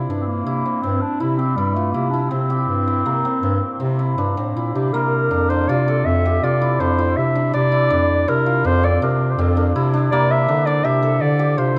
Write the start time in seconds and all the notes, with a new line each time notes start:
Already playing: C4 E4 G4
0.09 G2 D4
0.21 C4
0.27 A#3
0.45 C3 E4
0.66 C4
0.82 G2 C4
1.02 D4
1.20 C3 E4
1.38 C4 G4
1.56 G2 G3 E4
1.74 A3 F4
1.92 C3 A#3 E4
2.10 D4 E4
2.29 C3 C4
2.50 G4
2.68 G2
2.88 E4
3.05 C3 A#3
3.25 C4
3.42 G2 C4
3.80 C3 C4
3.99 E4
4.17 G2 D4
4.37 A2 C4
4.56 A#2 E4
4.75 C3 D4 G4
4.93 C3 A#3 A#4
5.31 F2 D4
5.50 D4 C5
5.68 C3 F4 D5
5.88 A4
6.05 F2 E5
6.26 G4
6.42 C3 F4 D5
6.61 E4
6.80 F2 D4 C5
6.99 E4
7.17 C3 E5
7.35 D4
7.54 C3 D4 D5
7.72 E4
7.90 F2 D4
8.28 C3 E4 A#4
8.46 F4
8.64 F2 D4 C5
8.83 C4 D5
9.01 C3 D4 A#4
9.31 C5
9.38 F2 C4 A#4
9.50 A4
9.57 D4 A#4
9.75 C3 E4
9.94 D4
10.11 C3 A#3 D5
10.31 E5
10.48 D3 D4
10.66 D4 D5
10.84 C3 G4 E5
11.03 A4
11.21 D3 D5
11.39 G4
11.58 C3 F4 C5